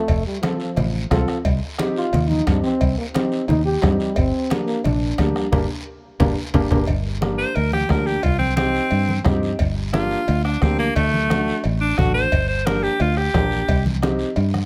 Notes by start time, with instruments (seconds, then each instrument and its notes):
Already playing: trombone A3
0.08 fingered electric bass F1, bombo low, cowbell, high conga, long guiro
0.26 trombone G3
0.41 trombone F3, upright piano C4 F4 A4, bombo rim, cowbell, high conga, short guiro
0.60 trombone F3, short guiro
0.76 fingered electric bass A1, cowbell, high conga, low conga, long guiro
1.10 fingered electric bass C2, upright piano C4 F4 A4, bombo low, bombo rim, cowbell, high conga, low conga, low timbale, short guiro
1.28 bombo rim, short guiro
1.45 fingered electric bass C2, bombo low, cowbell, long guiro
1.78 upright piano C4 D#4 G4, bombo rim, cowbell, high conga, short guiro
1.96 trombone F4, short guiro
2.13 fingered electric bass D#2, cowbell, high conga, low conga, long guiro
2.29 trombone D#4, high conga
2.46 fingered electric bass G2, upright piano C4 D#4 G4, trombone D4, bombo low, bombo rim, cowbell, high conga, short guiro
2.63 trombone C4, short guiro
2.81 fingered electric bass C2, bombo low, cowbell, high conga, long guiro
2.98 trombone A#3
3.14 trombone C4, upright piano C4 D#4 G4, bombo rim, cowbell, high conga, short guiro
3.32 short guiro
3.48 fingered electric bass D#2, trombone D#4, cowbell, high conga, low conga, long guiro
3.65 trombone G4
3.82 fingered electric bass G2, trombone G3, upright piano C4 D#4 G4, bombo low, bombo rim, cowbell, high conga, low timbale, short guiro
4.00 short guiro
4.16 fingered electric bass G1, trombone C4, bombo low, cowbell, high conga, long guiro
4.50 upright piano A#3 D4 G4, bombo rim, cowbell, high conga, short guiro
4.66 trombone A#3, short guiro
4.84 fingered electric bass A#1, trombone D4, cowbell, high conga, low conga, long guiro
5.18 fingered electric bass D2, upright piano A#3 D4 G4, bombo low, bombo rim, cowbell, high conga, short guiro
5.35 trombone G3, bombo rim, short guiro
5.52 fingered electric bass G1, trombone A#3, upright piano A#3 D4 G4, bombo low, low conga, high timbale, long guiro
6.19 fingered electric bass G1, trombone A#3, upright piano A#3 D4 G4, bombo low, low conga, high timbale, long guiro
6.54 fingered electric bass G1, trombone A#3, upright piano A#3 D4 G4, bombo low, low conga, high timbale, long guiro
6.71 fingered electric bass G1, trombone A#3, upright piano A#3 D4 G4, bombo low, low conga, high timbale, long guiro
6.87 fingered electric bass G1, bombo low, cowbell, high conga, long guiro
7.21 upright piano A#3 D4 G4, bombo rim, high conga, short guiro
7.38 alto saxophone C5, short guiro
7.56 fingered electric bass D2, alto saxophone A#4, cowbell, high conga, long guiro
7.72 alto saxophone G4, bombo rim, high conga
7.89 fingered electric bass D2, upright piano A#3 D4 G4, alto saxophone A#4, bombo low, bombo rim, high conga, low timbale, short guiro
8.06 alto saxophone G4, short guiro
8.23 fingered electric bass C2, alto saxophone F4, bombo low, cowbell, high conga, long guiro
8.39 alto saxophone C4, high conga
8.56 alto saxophone C4, upright piano C4 D#4 G4, bombo rim, high conga, short guiro
8.75 short guiro
8.91 fingered electric bass G2, cowbell, high conga, long guiro
9.09 high conga
9.24 fingered electric bass G2, upright piano C4 D#4 G4, bombo low, bombo rim, high conga, low conga, low timbale, short guiro
9.43 short guiro
9.59 fingered electric bass G1, bombo low, cowbell, high conga, long guiro
9.92 upright piano A#3 D4 G4, alto saxophone F4, bombo rim, high conga, short guiro
10.11 short guiro
10.28 fingered electric bass D2, cowbell, high conga, long guiro
10.44 alto saxophone D4, bombo rim
10.61 fingered electric bass D2, upright piano A#3 D4 G4, alto saxophone C4, bombo low, bombo rim, high conga, short guiro
10.78 alto saxophone A#3, short guiro
10.95 fingered electric bass D2, alto saxophone A3, bombo low, cowbell, high conga, long guiro
11.14 high conga
11.30 upright piano A3 D4 F#4, bombo rim, high conga, short guiro
11.48 short guiro
11.64 fingered electric bass A1, cowbell, high conga, long guiro
11.81 alto saxophone D4
11.98 fingered electric bass A1, upright piano A3 D4 F#4, alto saxophone F#4, bombo low, bombo rim, high conga, low conga, short guiro
12.14 alto saxophone C5, short guiro
12.32 fingered electric bass G1, bombo low, cowbell, long guiro
12.48 alto saxophone C5
12.66 upright piano A#3 D4 G4, alto saxophone A#4, bombo rim, high conga, short guiro
12.83 alto saxophone G4, short guiro
13.00 fingered electric bass D2, alto saxophone F4, cowbell, high conga, long guiro
13.17 alto saxophone G4, bombo rim
13.34 fingered electric bass A#1, upright piano A#3 D4 G4, bombo low, bombo rim, high conga, low timbale, short guiro
13.51 short guiro
13.68 fingered electric bass C2, bombo low, cowbell, high conga, long guiro
13.86 high conga
14.02 upright piano C4 D#4 G4, bombo rim, high conga, short guiro
14.19 short guiro
14.36 fingered electric bass G2, cowbell, high conga, long guiro
14.54 bombo rim, high conga